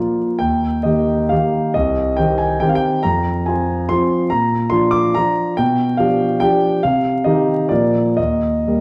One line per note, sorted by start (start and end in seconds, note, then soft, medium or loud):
0.00 0.37 F3 soft
0.00 0.38 A#3 soft
0.00 0.38 F4 soft
0.00 0.18 D5 soft
0.39 0.83 D#2 soft
0.39 0.84 G5 medium
0.83 1.27 D#3 soft
0.83 1.27 A#3 soft
0.83 1.27 G4 soft
0.83 1.30 D#5 medium
1.29 1.72 D#3 soft
1.29 1.72 A#3 soft
1.29 1.72 G4 soft
1.29 1.74 F5 medium
1.74 2.17 C2 soft
1.74 2.18 D#5 medium
2.17 2.58 D#3 soft
2.17 2.58 C4 soft
2.17 2.59 G4 soft
2.17 2.39 G5 medium
2.38 2.61 G#5 medium
2.60 3.00 D#3 soft
2.60 3.00 C4 soft
2.60 3.01 G4 soft
2.60 2.68 G5 medium
2.69 2.76 F5 medium
2.75 3.04 G5 medium
3.03 3.46 F2 soft
3.03 3.46 A#5 medium
3.46 3.86 F3 soft
3.46 3.86 C4 soft
3.46 3.87 F4 soft
3.46 3.89 G#5 medium
3.89 4.28 F3 soft
3.89 4.28 C4 soft
3.89 4.28 F4 soft
3.89 4.31 C6 medium
4.30 4.71 A#2 soft
4.30 4.71 A#5 medium
4.70 5.11 F3 soft
4.70 5.11 D4 soft
4.70 5.12 F4 soft
4.70 4.92 C6 medium
4.91 5.14 D6 medium
5.14 5.54 F3 soft
5.14 5.54 D4 soft
5.14 5.54 F4 soft
5.14 5.57 A#5 medium
5.57 5.98 B2 medium
5.57 5.98 G5 medium
5.97 6.37 F3 soft
5.97 6.37 D4 soft
5.97 6.37 G4 soft
5.97 6.40 F5 medium
6.40 6.79 F3 soft
6.40 6.80 D4 soft
6.40 6.80 G4 soft
6.40 6.82 G5 medium
6.83 7.25 C3 soft
6.83 7.25 F5 medium
7.24 7.66 D#3 soft
7.24 7.67 D#4 soft
7.24 7.67 G4 soft
7.24 7.70 D#5 medium
7.69 8.17 A#2 soft
7.69 8.14 F3 soft
7.69 8.15 A#3 soft
7.69 8.15 A#4 soft
7.69 8.17 D5 medium
8.17 8.66 D#2 soft
8.17 8.80 D#5 medium
8.67 8.80 G3 soft
8.67 8.80 A#3 soft
8.67 8.80 A#4 soft